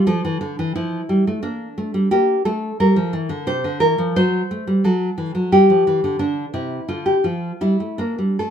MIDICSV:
0, 0, Header, 1, 2, 480
1, 0, Start_track
1, 0, Tempo, 681818
1, 57, Time_signature, 3, 2, 24, 8
1, 4857, Tempo, 717703
1, 5337, Tempo, 785340
1, 5879, End_track
2, 0, Start_track
2, 0, Title_t, "Nylon-string guitar"
2, 0, Program_c, 0, 24
2, 47, Note_on_c, 0, 53, 61
2, 50, Note_on_c, 0, 69, 74
2, 168, Note_off_c, 0, 53, 0
2, 173, Note_on_c, 0, 52, 58
2, 284, Note_off_c, 0, 52, 0
2, 287, Note_on_c, 0, 50, 57
2, 408, Note_off_c, 0, 50, 0
2, 415, Note_on_c, 0, 52, 61
2, 516, Note_off_c, 0, 69, 0
2, 529, Note_off_c, 0, 52, 0
2, 532, Note_on_c, 0, 53, 52
2, 532, Note_on_c, 0, 64, 73
2, 706, Note_off_c, 0, 53, 0
2, 769, Note_on_c, 0, 55, 56
2, 886, Note_off_c, 0, 55, 0
2, 897, Note_on_c, 0, 57, 61
2, 990, Note_off_c, 0, 64, 0
2, 1000, Note_off_c, 0, 57, 0
2, 1003, Note_on_c, 0, 58, 64
2, 1005, Note_on_c, 0, 62, 64
2, 1179, Note_off_c, 0, 58, 0
2, 1251, Note_on_c, 0, 57, 61
2, 1364, Note_off_c, 0, 57, 0
2, 1367, Note_on_c, 0, 55, 61
2, 1467, Note_off_c, 0, 62, 0
2, 1482, Note_off_c, 0, 55, 0
2, 1487, Note_on_c, 0, 67, 75
2, 1489, Note_on_c, 0, 58, 62
2, 1662, Note_off_c, 0, 58, 0
2, 1717, Note_off_c, 0, 67, 0
2, 1726, Note_on_c, 0, 69, 76
2, 1730, Note_on_c, 0, 57, 59
2, 1901, Note_off_c, 0, 57, 0
2, 1956, Note_off_c, 0, 69, 0
2, 1971, Note_on_c, 0, 55, 53
2, 1972, Note_on_c, 0, 70, 72
2, 2082, Note_off_c, 0, 55, 0
2, 2086, Note_on_c, 0, 53, 62
2, 2199, Note_off_c, 0, 53, 0
2, 2203, Note_on_c, 0, 52, 52
2, 2318, Note_off_c, 0, 52, 0
2, 2318, Note_on_c, 0, 50, 62
2, 2428, Note_off_c, 0, 70, 0
2, 2436, Note_off_c, 0, 50, 0
2, 2441, Note_on_c, 0, 48, 61
2, 2444, Note_on_c, 0, 72, 82
2, 2558, Note_off_c, 0, 48, 0
2, 2564, Note_on_c, 0, 50, 56
2, 2674, Note_off_c, 0, 72, 0
2, 2676, Note_on_c, 0, 70, 76
2, 2680, Note_off_c, 0, 50, 0
2, 2680, Note_on_c, 0, 52, 57
2, 2799, Note_off_c, 0, 52, 0
2, 2804, Note_on_c, 0, 53, 59
2, 2915, Note_off_c, 0, 70, 0
2, 2922, Note_off_c, 0, 53, 0
2, 2929, Note_on_c, 0, 54, 60
2, 2931, Note_on_c, 0, 72, 83
2, 3105, Note_off_c, 0, 54, 0
2, 3174, Note_on_c, 0, 57, 56
2, 3288, Note_off_c, 0, 57, 0
2, 3291, Note_on_c, 0, 55, 59
2, 3392, Note_off_c, 0, 72, 0
2, 3405, Note_off_c, 0, 55, 0
2, 3409, Note_on_c, 0, 54, 51
2, 3413, Note_on_c, 0, 69, 72
2, 3582, Note_off_c, 0, 54, 0
2, 3644, Note_on_c, 0, 52, 51
2, 3761, Note_off_c, 0, 52, 0
2, 3764, Note_on_c, 0, 54, 54
2, 3870, Note_off_c, 0, 69, 0
2, 3881, Note_off_c, 0, 54, 0
2, 3888, Note_on_c, 0, 55, 60
2, 3889, Note_on_c, 0, 67, 72
2, 4004, Note_off_c, 0, 55, 0
2, 4011, Note_on_c, 0, 53, 50
2, 4126, Note_off_c, 0, 53, 0
2, 4133, Note_on_c, 0, 52, 57
2, 4248, Note_off_c, 0, 52, 0
2, 4251, Note_on_c, 0, 50, 57
2, 4352, Note_off_c, 0, 50, 0
2, 4352, Note_off_c, 0, 67, 0
2, 4360, Note_on_c, 0, 50, 54
2, 4360, Note_on_c, 0, 62, 63
2, 4537, Note_off_c, 0, 50, 0
2, 4596, Note_off_c, 0, 62, 0
2, 4601, Note_on_c, 0, 48, 53
2, 4602, Note_on_c, 0, 64, 61
2, 4780, Note_off_c, 0, 48, 0
2, 4839, Note_off_c, 0, 64, 0
2, 4847, Note_on_c, 0, 50, 47
2, 4847, Note_on_c, 0, 65, 60
2, 4963, Note_on_c, 0, 67, 59
2, 4968, Note_off_c, 0, 65, 0
2, 5021, Note_off_c, 0, 50, 0
2, 5085, Note_on_c, 0, 65, 55
2, 5086, Note_on_c, 0, 53, 47
2, 5087, Note_off_c, 0, 67, 0
2, 5264, Note_off_c, 0, 53, 0
2, 5322, Note_off_c, 0, 65, 0
2, 5331, Note_on_c, 0, 55, 50
2, 5334, Note_on_c, 0, 64, 63
2, 5444, Note_off_c, 0, 55, 0
2, 5449, Note_on_c, 0, 57, 44
2, 5560, Note_off_c, 0, 64, 0
2, 5560, Note_on_c, 0, 62, 58
2, 5563, Note_off_c, 0, 57, 0
2, 5565, Note_on_c, 0, 58, 48
2, 5682, Note_off_c, 0, 58, 0
2, 5684, Note_on_c, 0, 55, 50
2, 5799, Note_off_c, 0, 62, 0
2, 5804, Note_off_c, 0, 55, 0
2, 5810, Note_on_c, 0, 69, 57
2, 5816, Note_on_c, 0, 57, 49
2, 5879, Note_off_c, 0, 57, 0
2, 5879, Note_off_c, 0, 69, 0
2, 5879, End_track
0, 0, End_of_file